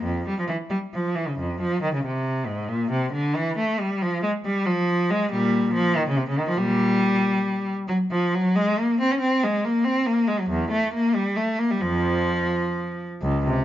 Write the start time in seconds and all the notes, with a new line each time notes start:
0.04 F2
0.27 G3
0.39 F3
0.48 E3
0.70 G3
0.94 F3
1.15 E3
1.28 C#3
1.39 F2
1.61 F3
1.82 D#3
1.94 C#3
2.04 C3
2.47 G#2
2.68 A#2
2.91 C3
3.12 D3
3.35 E3
3.58 A3
3.80 G3
4.02 F3
4.23 G#3
4.45 G3
4.66 F3
5.11 G#3
5.31 A#2 G3
5.74 F3
5.96 D#3
6.08 C#3
6.17 C3
6.29 C#3
6.39 D#3
6.48 F3
6.57 A#2 G3
7.88 F#3
8.11 F3
8.35 F#3
8.56 G#3
8.79 A#3
9.00 C4
9.11 C#4
9.21 C4
9.44 G#3
9.65 A#3
9.84 C4
10.07 A#3
10.27 G#3
10.40 F#3
10.50 E2
10.71 A3
10.94 A#3
11.15 G3
11.36 A3
11.59 A#3
11.71 G3
11.81 F2 F3
13.22 C#2
13.46 C3